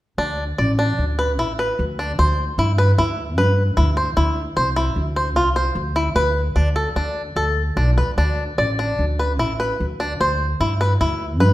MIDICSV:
0, 0, Header, 1, 3, 480
1, 0, Start_track
1, 0, Tempo, 398406
1, 222, Time_signature, 5, 2, 24, 8
1, 7419, Tempo, 403497
1, 13814, End_track
2, 0, Start_track
2, 0, Title_t, "Five-string banjo"
2, 0, Program_c, 0, 105
2, 220, Note_on_c, 0, 62, 59
2, 523, Note_off_c, 0, 62, 0
2, 704, Note_on_c, 0, 74, 58
2, 856, Note_off_c, 0, 74, 0
2, 948, Note_on_c, 0, 62, 55
2, 1251, Note_off_c, 0, 62, 0
2, 1430, Note_on_c, 0, 71, 51
2, 1582, Note_off_c, 0, 71, 0
2, 1674, Note_on_c, 0, 64, 59
2, 1825, Note_off_c, 0, 64, 0
2, 1916, Note_on_c, 0, 71, 50
2, 2216, Note_off_c, 0, 71, 0
2, 2398, Note_on_c, 0, 62, 54
2, 2548, Note_off_c, 0, 62, 0
2, 2637, Note_on_c, 0, 72, 68
2, 2935, Note_off_c, 0, 72, 0
2, 3118, Note_on_c, 0, 64, 61
2, 3267, Note_off_c, 0, 64, 0
2, 3354, Note_on_c, 0, 71, 58
2, 3503, Note_off_c, 0, 71, 0
2, 3596, Note_on_c, 0, 64, 64
2, 3891, Note_off_c, 0, 64, 0
2, 4071, Note_on_c, 0, 71, 61
2, 4366, Note_off_c, 0, 71, 0
2, 4542, Note_on_c, 0, 64, 63
2, 4691, Note_off_c, 0, 64, 0
2, 4782, Note_on_c, 0, 72, 54
2, 4931, Note_off_c, 0, 72, 0
2, 5021, Note_on_c, 0, 64, 65
2, 5318, Note_off_c, 0, 64, 0
2, 5501, Note_on_c, 0, 72, 64
2, 5649, Note_off_c, 0, 72, 0
2, 5740, Note_on_c, 0, 64, 62
2, 6037, Note_off_c, 0, 64, 0
2, 6221, Note_on_c, 0, 72, 55
2, 6369, Note_off_c, 0, 72, 0
2, 6459, Note_on_c, 0, 65, 68
2, 6608, Note_off_c, 0, 65, 0
2, 6698, Note_on_c, 0, 72, 57
2, 6996, Note_off_c, 0, 72, 0
2, 7179, Note_on_c, 0, 64, 61
2, 7327, Note_off_c, 0, 64, 0
2, 7418, Note_on_c, 0, 71, 68
2, 7714, Note_off_c, 0, 71, 0
2, 7894, Note_on_c, 0, 62, 62
2, 8043, Note_off_c, 0, 62, 0
2, 8132, Note_on_c, 0, 69, 58
2, 8282, Note_off_c, 0, 69, 0
2, 8376, Note_on_c, 0, 62, 55
2, 8674, Note_off_c, 0, 62, 0
2, 8854, Note_on_c, 0, 69, 61
2, 9156, Note_off_c, 0, 69, 0
2, 9335, Note_on_c, 0, 62, 58
2, 9487, Note_off_c, 0, 62, 0
2, 9582, Note_on_c, 0, 71, 52
2, 9732, Note_off_c, 0, 71, 0
2, 9822, Note_on_c, 0, 62, 61
2, 10123, Note_off_c, 0, 62, 0
2, 10303, Note_on_c, 0, 74, 58
2, 10455, Note_off_c, 0, 74, 0
2, 10550, Note_on_c, 0, 62, 58
2, 10850, Note_off_c, 0, 62, 0
2, 11031, Note_on_c, 0, 71, 55
2, 11181, Note_off_c, 0, 71, 0
2, 11268, Note_on_c, 0, 64, 62
2, 11419, Note_off_c, 0, 64, 0
2, 11510, Note_on_c, 0, 71, 54
2, 11809, Note_off_c, 0, 71, 0
2, 11989, Note_on_c, 0, 62, 60
2, 12138, Note_off_c, 0, 62, 0
2, 12235, Note_on_c, 0, 72, 69
2, 12530, Note_off_c, 0, 72, 0
2, 12711, Note_on_c, 0, 64, 62
2, 12857, Note_off_c, 0, 64, 0
2, 12950, Note_on_c, 0, 71, 64
2, 13096, Note_off_c, 0, 71, 0
2, 13188, Note_on_c, 0, 64, 68
2, 13482, Note_off_c, 0, 64, 0
2, 13659, Note_on_c, 0, 71, 64
2, 13814, Note_off_c, 0, 71, 0
2, 13814, End_track
3, 0, Start_track
3, 0, Title_t, "Upright bass"
3, 0, Program_c, 1, 32
3, 215, Note_on_c, 1, 38, 64
3, 615, Note_off_c, 1, 38, 0
3, 705, Note_on_c, 1, 33, 63
3, 1103, Note_off_c, 1, 33, 0
3, 1187, Note_on_c, 1, 38, 56
3, 1672, Note_off_c, 1, 38, 0
3, 1672, Note_on_c, 1, 33, 63
3, 2068, Note_off_c, 1, 33, 0
3, 2157, Note_on_c, 1, 38, 71
3, 2549, Note_off_c, 1, 38, 0
3, 2633, Note_on_c, 1, 38, 68
3, 3027, Note_off_c, 1, 38, 0
3, 3107, Note_on_c, 1, 43, 66
3, 3502, Note_off_c, 1, 43, 0
3, 3590, Note_on_c, 1, 38, 64
3, 4071, Note_off_c, 1, 38, 0
3, 4071, Note_on_c, 1, 43, 71
3, 4458, Note_off_c, 1, 43, 0
3, 4546, Note_on_c, 1, 38, 79
3, 4935, Note_off_c, 1, 38, 0
3, 5022, Note_on_c, 1, 38, 71
3, 5412, Note_off_c, 1, 38, 0
3, 5504, Note_on_c, 1, 36, 64
3, 5892, Note_off_c, 1, 36, 0
3, 5977, Note_on_c, 1, 38, 60
3, 6453, Note_off_c, 1, 38, 0
3, 6453, Note_on_c, 1, 36, 67
3, 6846, Note_off_c, 1, 36, 0
3, 6930, Note_on_c, 1, 38, 74
3, 7325, Note_off_c, 1, 38, 0
3, 7413, Note_on_c, 1, 38, 67
3, 7805, Note_off_c, 1, 38, 0
3, 7893, Note_on_c, 1, 38, 65
3, 8284, Note_off_c, 1, 38, 0
3, 8370, Note_on_c, 1, 38, 60
3, 8764, Note_off_c, 1, 38, 0
3, 8847, Note_on_c, 1, 38, 64
3, 9246, Note_off_c, 1, 38, 0
3, 9330, Note_on_c, 1, 35, 58
3, 9553, Note_off_c, 1, 35, 0
3, 9578, Note_on_c, 1, 38, 56
3, 9798, Note_off_c, 1, 38, 0
3, 9817, Note_on_c, 1, 38, 64
3, 10214, Note_off_c, 1, 38, 0
3, 10300, Note_on_c, 1, 33, 58
3, 10698, Note_off_c, 1, 33, 0
3, 10785, Note_on_c, 1, 38, 64
3, 11271, Note_off_c, 1, 38, 0
3, 11271, Note_on_c, 1, 33, 62
3, 11663, Note_off_c, 1, 33, 0
3, 11755, Note_on_c, 1, 38, 70
3, 12144, Note_off_c, 1, 38, 0
3, 12230, Note_on_c, 1, 38, 68
3, 12620, Note_off_c, 1, 38, 0
3, 12705, Note_on_c, 1, 43, 63
3, 13094, Note_off_c, 1, 43, 0
3, 13185, Note_on_c, 1, 38, 71
3, 13658, Note_off_c, 1, 38, 0
3, 13658, Note_on_c, 1, 43, 74
3, 13814, Note_off_c, 1, 43, 0
3, 13814, End_track
0, 0, End_of_file